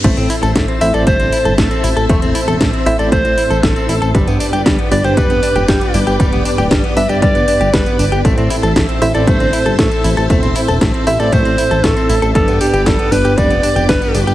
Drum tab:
CC |x---------------|----------------|----------------|----------------|
HH |xxoxxxoxxxoxxxox|xxoxxxoxxxoxxxox|xxoxxxoxxxoxxxox|xxoxxxoxxxoxxxox|
TB |xxxxx-xxxxxxxxxx|xxxxx-xxxxxxxxxx|xxxxx-xxxxxxxxxx|xxxxx-xxxxxxxxxx|
SD |----o-------o---|----o-------o---|----o-------o---|----o-------o---|
BD |o---o---o---o---|o---o---o---o---|o---o---o---o---|o---o---o---o---|

CC |----------------|----------------|----------------|
HH |xxoxxxoxxxoxxxox|xxoxxxoxxxoxxxox|xxoxxxoxxxoxxxox|
TB |xxxxx-xxxxxxxxxx|xxxxx-xxxxxxxxxx|xxxxx-xxxxxxxxxx|
SD |----o-------o---|----o-------o---|----o-------o---|
BD |o---o---o---o---|o---o---o---o---|o---o---o---o---|